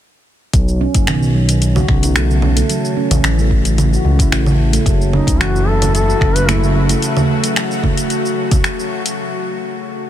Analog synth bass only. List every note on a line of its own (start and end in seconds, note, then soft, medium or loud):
0.53 0.86 B1 medium
0.94 1.09 F#1 loud
1.08 1.81 B1 medium
1.89 2.62 B1 loud
3.11 3.19 A1 loud
3.24 3.97 A1 medium
4.04 4.22 C#2 medium
4.31 4.78 A1 medium
4.86 5.19 F#1 loud
5.27 5.41 C#2 loud
5.40 6.13 F#1 medium
6.21 6.94 F#1 loud